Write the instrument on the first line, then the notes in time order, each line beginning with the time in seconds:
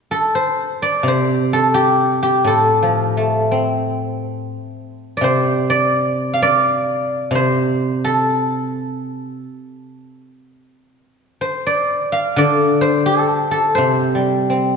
guzheng
0.11 A4
0.35 C5
0.82 D5
1.03 C3
1.08 C5
1.53 A4
1.74 G4
2.23 G4
2.44 A2 A4
2.82 F3
3.17 A3
3.51 C4
5.17 D5
5.21 C3 C5
5.70 D5
6.34 F5
6.42 D5
7.31 C3
7.35 C5
8.05 A4
11.41 C5
11.67 D5
12.12 F5
12.36 D3 D5
12.81 C5
13.06 A4
13.51 A4
13.75 C3 C5
14.15 G3
14.50 C4